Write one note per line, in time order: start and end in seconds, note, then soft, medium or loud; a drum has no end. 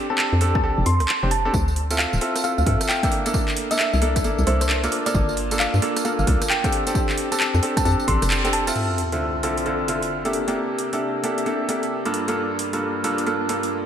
0.10 0.39 C4 medium
0.10 0.39 D4 medium
0.10 0.39 G4 medium
0.10 0.39 A4 medium
0.10 0.15 A5 medium
0.18 0.27 A5 medium
0.18 clap loud
0.33 0.65 F2 medium
0.33 cross-stick soft
0.41 0.62 C4 medium
0.41 0.61 D4 medium
0.41 0.61 G4 medium
0.41 0.61 A4 medium
0.41 open hi-hat loud
0.55 0.60 A5 medium
0.55 kick loud
0.55 cross-stick medium
0.63 0.74 C2 medium
0.63 0.84 C4 medium
0.63 0.84 D4 medium
0.63 0.84 G4 medium
0.63 0.84 A4 medium
0.63 0.73 A5 medium
0.78 0.84 F1 medium
0.86 1.02 F2 medium
0.86 1.05 C6 medium
0.86 open hi-hat loud
1.00 1.06 C2 medium
1.00 cross-stick medium
1.00 open hi-hat medium
1.09 clap loud
1.23 1.50 F1 medium
1.23 1.28 C4 medium
1.23 1.28 D4 medium
1.23 1.28 G4 medium
1.23 1.28 C5 medium
1.31 1.40 A5 medium
1.31 open hi-hat medium
1.45 1.50 C4 medium
1.45 1.50 D4 medium
1.45 1.50 G4 medium
1.45 1.50 A4 medium
1.45 1.51 A5 medium
1.54 2.07 D2 loud
1.54 kick loud
1.54 tambourine medium
1.68 tambourine soft
1.76 open hi-hat medium
1.91 2.19 C4 medium
1.91 2.19 E4 medium
1.91 2.19 F4 medium
1.91 2.19 A4 medium
1.91 closed hi-hat medium
1.91 tambourine medium
1.99 2.17 F5 medium
1.99 clap loud
1.99 tambourine medium
2.13 2.19 D1 medium
2.13 cross-stick soft
2.13 tambourine soft
2.21 2.42 C4 medium
2.21 2.42 E4 medium
2.21 2.42 F4 medium
2.21 2.42 A4 medium
2.21 open hi-hat loud
2.36 cross-stick medium
2.36 closed hi-hat medium
2.36 tambourine medium
2.44 2.64 C4 medium
2.44 2.64 E4 medium
2.44 2.64 F4 medium
2.44 2.64 A4 medium
2.44 2.53 F5 medium
2.44 closed hi-hat soft
2.44 tambourine soft
2.58 2.64 D2 medium
2.58 2.63 F5 medium
2.58 tambourine soft
2.66 2.77 G2 medium
2.66 3.00 C4 medium
2.66 3.00 E4 medium
2.66 3.00 F4 medium
2.66 3.00 A4 medium
2.66 kick loud
2.66 open hi-hat loud
2.81 cross-stick medium
2.81 closed hi-hat medium
2.81 tambourine medium
2.89 2.98 G5 medium
2.89 clap loud
2.89 tambourine medium
3.03 3.22 A#3 medium
3.03 3.22 D4 medium
3.03 3.22 E4 medium
3.03 3.22 A4 medium
3.03 3.08 G5 medium
3.03 kick loud
3.03 closed hi-hat medium
3.03 tambourine soft
3.12 open hi-hat medium
3.26 3.68 A#3 medium
3.26 3.68 D4 medium
3.26 3.67 E4 medium
3.26 3.68 A4 medium
3.26 closed hi-hat medium
3.26 tambourine medium
3.34 kick loud
3.34 tambourine medium
3.48 clap medium
3.48 tambourine soft
3.57 open hi-hat loud
3.71 4.00 A#3 medium
3.71 4.00 D4 medium
3.71 4.00 E4 medium
3.71 4.00 A4 medium
3.71 3.78 E5 medium
3.71 closed hi-hat medium
3.71 tambourine medium
3.79 3.88 E5 medium
3.79 clap loud
3.79 tambourine medium
3.93 4.26 C2 medium
3.93 3.99 E5 medium
3.93 cross-stick soft
3.93 tambourine soft
4.02 4.22 A#3 medium
4.02 4.22 D4 medium
4.02 4.22 E4 medium
4.02 4.22 A4 loud
4.02 open hi-hat loud
4.16 kick loud
4.16 cross-stick medium
4.16 closed hi-hat medium
4.16 tambourine medium
4.24 4.35 G1 medium
4.24 4.45 A#3 medium
4.24 4.45 D4 medium
4.24 4.45 E4 medium
4.24 4.45 A4 medium
4.24 closed hi-hat soft
4.24 tambourine medium
4.39 4.45 C2 medium
4.39 tambourine soft
4.47 4.88 C2 loud
4.47 4.80 A#3 medium
4.47 4.80 D4 medium
4.47 4.80 E4 medium
4.47 4.80 A4 medium
4.47 4.56 C5 medium
4.47 open hi-hat loud
4.61 4.66 C5 medium
4.61 cross-stick medium
4.61 closed hi-hat medium
4.61 tambourine medium
4.69 clap loud
4.69 tambourine medium
4.84 5.03 A#3 medium
4.84 5.03 D4 medium
4.84 5.03 F4 medium
4.84 5.03 A4 loud
4.84 closed hi-hat medium
4.84 tambourine soft
4.92 open hi-hat loud
5.06 5.48 A#3 medium
5.06 5.48 D4 medium
5.06 5.48 F4 medium
5.06 5.48 A4 medium
5.06 5.68 D5 medium
5.06 closed hi-hat medium
5.06 tambourine medium
5.15 5.68 G1 loud
5.15 kick loud
5.15 tambourine medium
5.29 tambourine soft
5.37 open hi-hat loud
5.51 5.80 A#3 medium
5.51 5.80 D4 medium
5.51 5.80 F4 medium
5.51 5.80 A4 medium
5.51 closed hi-hat medium
5.51 tambourine medium
5.60 5.78 F5 medium
5.60 clap loud
5.60 tambourine medium
5.74 5.80 G2 medium
5.74 cross-stick soft
5.74 tambourine soft
5.82 6.03 A#3 medium
5.82 6.03 D4 medium
5.82 6.03 F4 medium
5.82 6.03 A4 medium
5.82 open hi-hat loud
5.96 cross-stick medium
5.96 closed hi-hat medium
5.96 tambourine medium
6.05 6.25 A#3 medium
6.05 6.25 D4 medium
6.05 6.25 F4 medium
6.05 6.25 A4 medium
6.05 6.14 F5 medium
6.05 closed hi-hat soft
6.05 tambourine medium
6.19 6.25 G1 medium
6.19 6.24 F5 medium
6.19 tambourine soft
6.27 6.38 C2 loud
6.27 6.61 A#3 medium
6.27 6.61 D4 medium
6.27 6.61 F4 medium
6.27 6.61 A4 medium
6.27 kick loud
6.27 open hi-hat loud
6.42 cross-stick medium
6.42 closed hi-hat medium
6.42 tambourine medium
6.50 6.59 G5 medium
6.50 clap loud
6.50 tambourine soft
6.64 6.83 C4 medium
6.64 6.83 D4 medium
6.64 6.83 G4 medium
6.64 6.83 A4 medium
6.64 6.70 G5 medium
6.64 kick loud
6.64 closed hi-hat medium
6.64 tambourine soft
6.72 open hi-hat loud
6.87 7.28 C4 medium
6.87 7.28 D4 medium
6.87 7.28 G4 medium
6.87 7.28 A4 medium
6.87 closed hi-hat medium
6.87 tambourine medium
6.95 kick loud
6.95 tambourine medium
7.09 clap medium
7.09 tambourine soft
7.18 open hi-hat loud
7.32 7.61 C4 medium
7.32 7.61 D4 medium
7.32 7.61 G4 medium
7.32 7.61 A4 medium
7.32 7.37 A5 medium
7.32 closed hi-hat medium
7.32 tambourine medium
7.40 7.49 A5 medium
7.40 clap loud
7.40 tambourine soft
7.54 7.60 F2 medium
7.54 cross-stick soft
7.54 tambourine soft
7.63 7.83 C4 medium
7.63 7.83 D4 medium
7.63 7.83 G4 medium
7.63 7.83 A4 medium
7.63 open hi-hat loud
7.77 7.82 A5 medium
7.77 kick loud
7.77 cross-stick medium
7.77 closed hi-hat medium
7.77 tambourine medium
7.85 7.96 F2 loud
7.85 8.06 C4 medium
7.85 8.06 D4 medium
7.85 8.06 G4 medium
7.85 8.06 A4 medium
7.85 7.94 A5 medium
7.85 closed hi-hat soft
7.85 tambourine soft
8.00 tambourine soft
8.08 8.18 A1 loud
8.08 8.41 C4 medium
8.08 8.41 D4 medium
8.08 8.41 G4 medium
8.08 8.41 A4 medium
8.08 8.26 C6 medium
8.08 kick medium
8.08 open hi-hat loud
8.22 8.72 F1 medium
8.22 cross-stick medium
8.22 closed hi-hat medium
8.22 tambourine medium
8.30 clap loud
8.30 tambourine medium
8.45 8.64 C4 medium
8.45 8.64 D4 medium
8.45 8.64 G4 medium
8.45 8.64 A4 medium
8.45 closed hi-hat medium
8.45 tambourine soft
8.53 8.62 A5 medium
8.53 open hi-hat loud
8.67 8.98 C4 medium
8.67 8.98 E4 medium
8.67 8.98 F4 medium
8.67 8.98 A4 loud
8.67 8.73 A5 medium
8.67 closed hi-hat medium
8.67 tambourine medium
8.76 crash medium
8.76 sub drop medium
8.98 open hi-hat medium
9.12 9.41 D3 medium
9.12 9.41 C4 medium
9.12 9.41 E4 medium
9.12 9.41 F4 medium
9.12 9.41 A4 medium
9.12 closed hi-hat medium
9.43 9.64 D3 medium
9.43 9.64 C4 medium
9.43 9.64 E4 medium
9.43 9.64 F4 medium
9.43 9.64 A4 medium
9.43 open hi-hat loud
9.57 closed hi-hat medium
9.66 9.86 D3 medium
9.66 9.86 C4 medium
9.66 9.86 E4 medium
9.66 9.86 F4 medium
9.66 9.86 A4 medium
9.66 closed hi-hat soft
9.88 10.22 D3 medium
9.88 10.22 C4 medium
9.88 10.22 E4 medium
9.88 10.22 F4 medium
9.88 10.22 A4 medium
9.88 open hi-hat loud
10.03 closed hi-hat medium
10.25 10.44 C3 medium
10.25 10.44 A#3 medium
10.25 10.44 D4 medium
10.25 10.44 E4 medium
10.25 10.44 G4 medium
10.25 10.44 A4 medium
10.25 closed hi-hat soft
10.33 open hi-hat loud
10.48 10.89 C3 medium
10.48 10.89 A#3 medium
10.48 10.89 D4 medium
10.48 10.89 E4 medium
10.48 10.89 G4 medium
10.48 10.89 A4 medium
10.48 closed hi-hat medium
10.79 open hi-hat medium
10.93 11.22 C3 medium
10.93 11.22 A#3 medium
10.93 11.22 D4 medium
10.93 11.22 E4 medium
10.93 11.22 G4 medium
10.93 11.22 A4 medium
10.93 closed hi-hat medium
11.24 11.44 C3 medium
11.24 11.44 A#3 medium
11.24 11.44 D4 medium
11.24 11.44 E4 medium
11.24 11.44 G4 medium
11.24 11.44 A4 medium
11.24 open hi-hat loud
11.38 closed hi-hat medium
11.46 11.67 C3 medium
11.46 11.67 A#3 medium
11.46 11.67 D4 medium
11.46 11.67 E4 medium
11.46 11.67 G4 medium
11.46 11.67 A4 medium
11.46 closed hi-hat soft
11.69 12.02 C3 medium
11.69 12.02 A#3 medium
11.69 12.02 D4 medium
11.69 12.02 E4 medium
11.69 12.02 G4 medium
11.69 12.02 A4 medium
11.69 open hi-hat loud
11.83 open hi-hat medium
12.05 12.25 G2 medium
12.05 12.25 A#3 medium
12.05 12.25 D4 medium
12.05 12.25 F4 medium
12.05 12.25 A4 medium
12.05 closed hi-hat soft
12.14 open hi-hat loud
12.28 12.70 G2 medium
12.28 12.70 A#3 medium
12.28 12.70 D4 medium
12.28 12.70 F4 medium
12.28 12.70 A4 medium
12.28 closed hi-hat medium
12.59 open hi-hat medium
12.73 13.02 G2 medium
12.73 13.02 A#3 medium
12.73 13.02 D4 medium
12.73 13.02 F4 medium
12.73 13.02 A4 medium
12.73 closed hi-hat medium
13.04 13.25 G2 medium
13.04 13.25 A#3 medium
13.04 13.25 D4 medium
13.04 13.25 F4 medium
13.04 13.25 A4 medium
13.04 open hi-hat loud
13.18 closed hi-hat medium
13.27 13.47 G2 medium
13.27 13.47 A#3 medium
13.27 13.47 D4 medium
13.27 13.47 F4 medium
13.27 13.47 A4 medium
13.27 closed hi-hat soft
13.49 13.83 G2 medium
13.49 13.83 A#3 medium
13.49 13.83 D4 medium
13.49 13.83 F4 medium
13.49 13.83 A4 medium
13.49 open hi-hat loud
13.63 closed hi-hat medium